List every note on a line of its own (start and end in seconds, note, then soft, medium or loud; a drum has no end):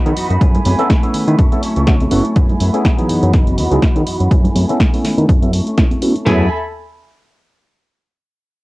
0.00 0.14 E3 medium
0.00 0.15 B3 medium
0.00 0.16 D#4 medium
0.00 0.17 F#4 loud
0.00 0.40 F#4 medium
0.00 0.40 D#5 medium
0.00 1.36 B5 medium
0.06 0.14 D#3 loud
0.06 0.12 F#3 medium
0.06 0.12 B3 medium
0.06 0.12 D#4 medium
0.06 0.12 E4 medium
0.06 0.12 G#4 medium
0.06 closed hi-hat soft
0.15 0.28 F#2 soft
0.15 0.30 E3 medium
0.15 0.30 B3 medium
0.15 0.29 D#4 medium
0.15 0.28 F#4 medium
0.15 open hi-hat loud
0.29 0.38 F#2 medium
0.29 0.40 B3 soft
0.29 0.41 D#4 soft
0.29 0.41 F#4 medium
0.29 closed hi-hat soft
0.40 0.60 F#2 loud
0.40 0.64 A3 medium
0.40 3.07 A3 medium
0.40 0.64 B3 medium
0.40 0.65 E4 medium
0.40 0.66 G#4 loud
0.40 1.38 G#5 medium
0.40 kick loud
0.40 closed hi-hat medium
0.55 closed hi-hat soft
0.55 low conga medium
0.55 shaker soft
0.65 0.75 F#2 medium
0.65 0.79 A3 medium
0.65 0.79 B3 medium
0.65 0.79 E4 medium
0.65 0.77 G#4 medium
0.65 open hi-hat loud
0.65 high conga loud
0.65 shaker medium
0.78 0.88 A3 loud
0.78 0.88 B3 medium
0.78 0.89 B3 medium
0.78 0.88 C#4 medium
0.78 0.88 E4 medium
0.78 0.89 E4 medium
0.78 0.90 G#4 medium
0.78 0.89 A4 loud
0.78 closed hi-hat soft
0.78 shaker soft
0.89 1.03 A3 medium
0.89 1.04 B3 medium
0.89 1.03 E4 loud
0.89 1.02 G#4 loud
0.89 kick loud
0.89 snare loud
0.89 closed hi-hat medium
1.03 1.37 A3 medium
1.03 1.37 B3 medium
1.03 1.28 B3 medium
1.03 1.37 C#4 medium
1.03 1.37 E4 medium
1.03 1.27 E4 medium
1.03 1.26 G#4 medium
1.03 closed hi-hat soft
1.03 shaker soft
1.14 1.25 D#3 soft
1.14 open hi-hat loud
1.27 1.36 D#3 loud
1.27 1.38 B3 medium
1.27 1.38 E4 medium
1.27 1.38 G#4 medium
1.27 closed hi-hat soft
1.38 1.49 F#2 loud
1.38 1.52 F#3 medium
1.38 1.52 C#4 loud
1.38 1.51 E4 loud
1.38 1.50 A4 loud
1.38 2.35 C#6 medium
1.38 kick loud
1.38 closed hi-hat medium
1.51 1.61 A3 medium
1.51 1.61 B3 medium
1.51 1.61 C#4 medium
1.51 1.62 C#4 medium
1.51 1.62 E4 medium
1.51 1.63 E4 medium
1.51 1.63 A4 medium
1.51 1.62 A4 medium
1.51 closed hi-hat soft
1.51 high conga medium
1.51 shaker soft
1.62 1.76 F#3 medium
1.62 1.77 C#4 medium
1.62 1.76 E4 medium
1.62 1.75 A4 medium
1.62 open hi-hat loud
1.62 shaker medium
1.76 2.07 C#2 medium
1.76 1.86 C#4 medium
1.76 1.87 E4 medium
1.76 1.87 A4 medium
1.76 closed hi-hat soft
1.76 shaker soft
1.87 2.10 F#3 medium
1.87 1.94 A3 medium
1.87 1.94 B3 medium
1.87 1.95 C#4 medium
1.87 2.11 C#4 loud
1.87 1.95 E4 medium
1.87 1.95 F#4 medium
1.87 kick loud
1.87 snare loud
1.87 closed hi-hat medium
2.00 closed hi-hat soft
2.00 high conga medium
2.00 shaker soft
2.11 2.22 F#1 medium
2.11 2.35 F#3 medium
2.11 2.23 A3 loud
2.11 2.23 B3 medium
2.11 2.23 C#4 medium
2.11 2.36 C#4 medium
2.11 2.23 E4 medium
2.11 2.35 E4 medium
2.11 2.23 F#4 loud
2.11 2.37 A4 medium
2.11 open hi-hat loud
2.11 shaker loud
2.25 closed hi-hat soft
2.25 shaker soft
2.35 2.55 F#2 loud
2.35 2.58 A3 medium
2.35 2.59 B3 loud
2.35 2.60 E4 loud
2.35 2.61 G#4 medium
2.35 3.09 G#5 medium
2.35 5.26 B5 medium
2.35 kick loud
2.35 closed hi-hat medium
2.49 closed hi-hat soft
2.49 low conga medium
2.49 shaker soft
2.60 2.70 F#2 medium
2.60 2.74 A3 medium
2.60 2.74 B3 medium
2.60 2.73 E4 medium
2.60 2.72 G#4 medium
2.60 open hi-hat loud
2.60 shaker medium
2.73 2.95 A3 medium
2.73 2.95 B3 medium
2.73 2.84 B3 medium
2.73 2.95 C#4 medium
2.73 2.95 E4 medium
2.73 2.84 E4 medium
2.73 2.85 G#4 medium
2.73 2.95 G#4 loud
2.73 closed hi-hat soft
2.84 2.98 A3 medium
2.84 2.99 B3 loud
2.84 2.98 E4 loud
2.84 kick loud
2.84 snare loud
2.84 closed hi-hat medium
2.97 3.68 E3 medium
2.97 3.68 F#3 loud
2.97 3.68 B3 medium
2.97 3.08 B3 medium
2.97 3.68 D#4 medium
2.97 3.09 E4 medium
2.97 3.09 G#4 medium
2.97 3.69 G#4 loud
2.97 closed hi-hat soft
3.09 3.20 F#2 soft
3.09 3.47 E3 medium
3.09 3.47 B3 medium
3.09 3.47 D#4 medium
3.09 4.30 F#4 medium
3.09 3.45 F#4 loud
3.09 4.30 D#5 medium
3.09 open hi-hat loud
3.23 3.35 F#2 loud
3.23 closed hi-hat soft
3.33 3.60 F#1 medium
3.33 kick loud
3.33 snare medium
3.33 closed hi-hat medium
3.47 3.57 B3 medium
3.47 3.58 D#4 medium
3.47 3.58 F#4 medium
3.47 closed hi-hat soft
3.47 high conga medium
3.47 shaker soft
3.57 3.68 E2 medium
3.57 3.71 E3 medium
3.57 3.72 B3 medium
3.57 3.71 D#4 medium
3.57 3.69 F#4 medium
3.57 open hi-hat loud
3.57 shaker loud
3.70 3.79 C#2 medium
3.70 3.81 F#3 medium
3.70 3.81 B3 medium
3.70 3.81 D#4 medium
3.70 3.82 D#4 medium
3.70 3.81 E4 medium
3.70 3.82 F#4 medium
3.70 3.81 G#4 loud
3.70 closed hi-hat soft
3.70 shaker soft
3.82 4.05 E3 medium
3.82 4.06 B3 medium
3.82 4.07 F#4 loud
3.82 kick loud
3.82 snare loud
3.82 closed hi-hat medium
3.95 4.04 D#3 loud
3.95 4.01 F#3 medium
3.95 4.02 B3 medium
3.95 4.02 D#4 medium
3.95 4.02 E4 medium
3.95 4.02 G#4 medium
3.95 closed hi-hat soft
4.06 4.18 F#2 soft
4.06 4.30 E3 medium
4.06 4.30 B3 medium
4.06 4.31 D#4 medium
4.06 4.32 F#4 medium
4.06 open hi-hat loud
4.20 4.28 F#2 medium
4.20 closed hi-hat soft
4.31 4.50 F#2 loud
4.31 4.54 A3 medium
4.31 6.25 A3 medium
4.31 4.55 B3 medium
4.31 4.55 E4 loud
4.31 4.56 G#4 loud
4.31 5.28 G#5 medium
4.31 kick loud
4.31 closed hi-hat medium
4.44 closed hi-hat soft
4.44 low conga loud
4.44 shaker soft
4.55 4.65 F#2 medium
4.55 4.69 A3 medium
4.55 4.69 B3 medium
4.55 4.69 E4 medium
4.55 4.67 G#4 medium
4.55 open hi-hat loud
4.55 high conga medium
4.55 shaker medium
4.68 4.79 A3 loud
4.68 4.79 B3 medium
4.68 4.79 B3 soft
4.68 4.79 C#4 medium
4.68 4.80 E4 medium
4.68 4.79 E4 medium
4.68 4.80 G#4 medium
4.68 4.79 A4 loud
4.68 closed hi-hat soft
4.68 shaker soft
4.79 4.93 A3 medium
4.79 4.94 B3 medium
4.79 4.93 E4 loud
4.79 kick loud
4.79 snare loud
4.79 closed hi-hat medium
4.92 5.27 A3 medium
4.92 5.28 B3 medium
4.92 5.19 B3 soft
4.92 5.28 C#4 medium
4.92 5.28 E4 medium
4.92 5.18 E4 medium
4.92 5.16 G#4 medium
4.92 open hi-hat medium
4.92 shaker soft
5.04 5.15 D#3 soft
5.04 snare medium
5.04 open hi-hat loud
5.17 5.26 D#3 loud
5.17 5.29 B3 soft
5.17 5.28 E4 medium
5.17 5.29 G#4 medium
5.17 closed hi-hat soft
5.17 high conga medium
5.17 shaker soft
5.28 5.61 F#2 loud
5.28 5.42 F#3 medium
5.28 5.42 C#4 loud
5.28 5.42 E4 loud
5.28 6.25 C#6 medium
5.28 kick loud
5.28 closed hi-hat medium
5.28 shaker medium
5.42 5.51 A3 medium
5.42 5.52 B3 medium
5.42 5.52 C#4 medium
5.42 5.52 E4 medium
5.42 5.53 E4 medium
5.42 5.53 A4 medium
5.42 5.52 A4 medium
5.42 closed hi-hat soft
5.42 high conga medium
5.42 shaker soft
5.52 5.66 F#3 medium
5.52 5.67 C#4 medium
5.52 5.66 E4 medium
5.52 5.65 A4 medium
5.52 open hi-hat loud
5.52 shaker loud
5.66 5.77 C#4 medium
5.66 5.77 E4 medium
5.66 5.77 A4 medium
5.66 closed hi-hat soft
5.77 6.00 F#3 medium
5.77 5.85 A3 medium
5.77 5.85 B3 medium
5.77 5.85 C#4 medium
5.77 6.01 C#4 medium
5.77 5.85 E4 medium
5.77 6.02 E4 medium
5.77 5.85 F#4 medium
5.77 kick loud
5.77 snare loud
5.77 closed hi-hat medium
5.91 closed hi-hat soft
5.91 high conga medium
5.91 shaker soft
6.01 6.15 F#3 medium
6.01 6.13 A3 loud
6.01 6.14 B3 medium
6.01 6.14 C#4 medium
6.01 6.16 C#4 medium
6.01 6.14 E4 medium
6.01 6.15 E4 medium
6.01 6.14 F#4 loud
6.01 6.14 A4 medium
6.01 open hi-hat loud
6.01 shaker loud
6.15 6.26 C#4 soft
6.15 6.26 E4 medium
6.15 6.26 A4 medium
6.15 closed hi-hat soft
6.15 shaker soft
6.25 6.49 F#2 loud
6.25 6.46 A3 medium
6.25 6.45 A3 medium
6.25 6.45 B3 medium
6.25 6.46 B3 medium
6.25 6.45 C#4 medium
6.25 6.47 E4 medium
6.25 6.46 E4 medium
6.25 6.47 G#4 loud
6.25 6.46 G#4 loud
6.25 6.49 A4 medium
6.25 6.49 E5 medium
6.25 6.49 G#5 medium
6.25 6.49 B5 medium
6.25 snare loud
6.25 floor tom loud